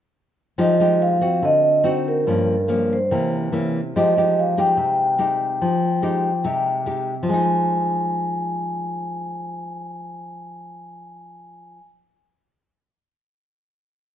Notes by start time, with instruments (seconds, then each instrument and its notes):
0.58 nylon-string guitar F3 G#3 D#4 G4, vibraphone D#5
0.80 nylon-string guitar G#3 D#4 G4
1.02 vibraphone F5
1.21 nylon-string guitar C4 F#4
1.42 nylon-string guitar D3, vibraphone D#5
1.84 nylon-string guitar C4 D#4 F#4
2.08 vibraphone A#4
2.27 nylon-string guitar G2 F3 A#3 C#4
2.68 nylon-string guitar F3 A#3 C#4
2.93 vibraphone C5
3.11 nylon-string guitar C3 E3 A#3 C#4
3.52 nylon-string guitar E3 A#3 C#4
3.96 nylon-string guitar F3 G#3 D#4 G4, vibraphone D#5
4.17 nylon-string guitar G#3 D#4 G4
4.39 vibraphone F5
4.57 nylon-string guitar G#3 D#4 G4, vibraphone G5
4.77 nylon-string guitar C3
5.18 nylon-string guitar G#3 D#4 G4
5.62 nylon-string guitar F3
6.02 nylon-string guitar G#3 D#4 G4
6.44 nylon-string guitar C3 G#3 D#4 G4
6.86 nylon-string guitar G#3 D#4 G4
7.23 nylon-string guitar F3
7.29 nylon-string guitar G#3, vibraphone G#5
7.33 nylon-string guitar D#4